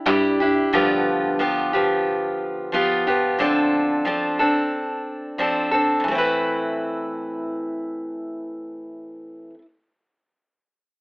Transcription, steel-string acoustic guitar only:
0.06 G3 D4 E4 G4
0.40 D4 E4 G4
0.73 G2 D3 F3 B3 F4 G4
1.39 F3 B3 F4 G4
1.73 F3 B3 F4 G4
2.72 F3 B3 F4 G4
3.07 F3 B3 F4 G4
3.38 D3 F3 C4 D4 A4
4.05 F3 C4 D4 A4
4.39 C4 D4 A4
5.38 F3 C4 D4 A4
5.71 C4 D4 A4
6.00 A2
6.04 E3
6.08 A3 C4
6.15 E4 B4

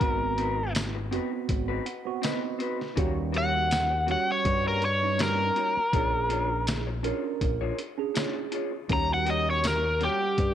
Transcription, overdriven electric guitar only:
Already playing: A#4
3.38 F#5
4.11 F#5
4.32 C#5
4.68 A#4
4.85 C#5
5.23 A#4
8.93 A#5
9.14 F#5
9.30 D#5
9.50 C#5
9.67 A#4
10.04 G4

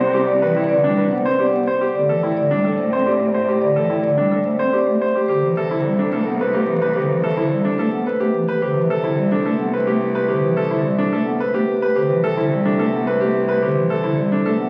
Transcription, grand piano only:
0.01 C5
0.14 G4
0.42 B4
0.56 E4
0.84 D4
0.98 B4
1.25 C5
1.40 G4
1.67 C5
1.81 G4
2.09 A4
2.23 E4
2.51 D4
2.65 A4
2.93 C5
3.06 G4
3.34 C5
3.48 G4
3.76 A4
3.90 E4
4.17 D4
4.32 A4
4.59 C5
4.73 G4
5.01 C5
5.15 G4
5.29 G4
5.57 A4
5.71 E4
5.99 D4
6.13 A4
6.41 B4
6.54 G4
6.82 B4
6.96 G4
7.24 A4
7.37 E4
7.65 D4
7.79 A4
8.07 B4
8.20 G4
8.48 B4
8.62 G4
8.90 A4
9.04 E4
9.32 D4
9.46 A4
9.73 B4
9.87 G4
10.15 B4
10.29 G4
10.57 A4
10.71 E4
10.98 D4
11.13 A4
11.40 B4
11.54 G4
11.82 B4
11.96 G4
12.24 A4
12.37 E4
12.65 D4
12.79 A4
13.07 B4
13.21 G4
13.49 B4
13.63 G4
13.90 A4
14.04 E4
14.32 D4
14.46 A4

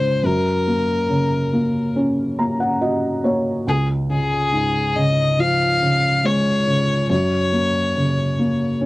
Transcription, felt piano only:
Already playing: C#2 C#3 F3 G#3
0.23 F#2
0.67 A#3
1.10 C#3
1.53 A#3
1.96 C#4
2.39 A#3 A#5
2.60 F#5
2.81 F#4 D#5
3.24 A#3 C#5
3.67 C#2
4.10 C#3
4.52 G#2
4.96 C#3
5.39 F3
5.82 C#3
6.24 G#3
6.67 C#3
7.10 F#2
7.53 A#3
7.96 C#3
8.39 A#3
8.81 C#4

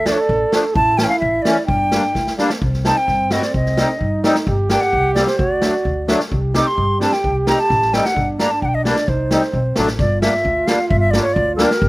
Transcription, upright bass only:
Already playing: D2
0.29 A1
0.76 A1
1.22 A1
1.68 G1
2.15 D2
2.62 C2
3.08 G2
3.54 C2
4.01 G2
4.47 G1
4.93 C2
5.39 D2
5.85 D2
6.32 C2
6.78 G2
7.24 C2
7.70 A1
8.16 G1
8.62 B1
9.08 C2
9.53 B1
9.77 A1
9.99 G1
10.45 D2
10.91 G1
11.36 D2
11.82 G1

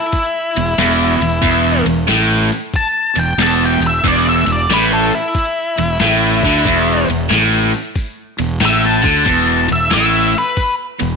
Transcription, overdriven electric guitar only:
0.57 E2
0.78 E2
1.22 E2
1.42 E2
1.86 E2
2.08 A2
3.16 E2
3.38 E2
3.82 E2
4.04 E2
4.46 E2
4.70 A2
5.78 E2
6.01 A2
6.45 D3
6.66 E2
7.10 E2
7.29 A2
8.38 E2
8.61 A2
9.03 D3
9.25 E2
9.69 E2
9.91 A2
11.00 E2

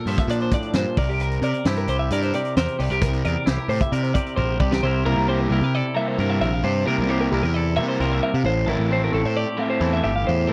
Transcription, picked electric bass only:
0.06 G2
0.28 A#2
0.74 G2
0.97 C2
1.42 C3
1.65 G2
1.88 C2
2.11 G2
2.57 E2
2.80 C2
2.91 C2
3.02 C2
3.25 E2
3.47 C2
3.68 A2
3.92 C3
4.37 A#1
4.60 C2
4.83 C2
5.06 C2
5.17 C2
5.50 C2
5.61 C3
6.18 G2
6.41 A#1
6.63 G2
6.87 C3
6.98 C2
7.32 C2
7.44 E2
7.77 C3
8.00 C2
8.34 C3
8.44 A1
8.67 A1
8.79 A1
9.13 A1
9.25 A2
9.81 E2
10.04 G1
10.28 E2

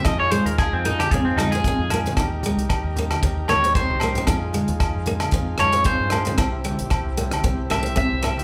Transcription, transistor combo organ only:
0.06 D#4 F4 G#4
2.18 G4 A#4
4.28 F4 G#4
6.39 C4 E4 G4

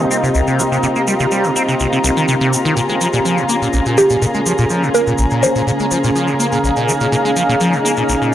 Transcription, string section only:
Already playing: C3 A#3 D#4 F4
2.77 C#3 A#3 G#4
6.64 D#4

